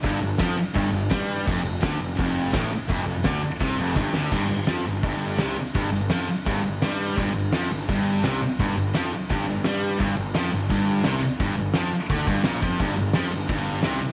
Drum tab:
CC |x-x-x-x-|x-x-x-x-|x-x-x---|x-x-x-x-|
SD |--o---o-|--o---o-|--o---oo|--o---o-|
BD |o-o-o-o-|o-o-o-o-|o-o-o-o-|o---o---|

CC |x-x-x-x-|x-x-x-x-|x-x-x-x-|x-x-x-x-|
SD |--o---o-|--o---o-|--o---o-|--o---o-|
BD |o---o---|o---o---|o---o---|o---o---|

CC |x-x-x-x-|x-x-x-x-|
SD |--o---o-|--o---o-|
BD |o---oo-o|o---o---|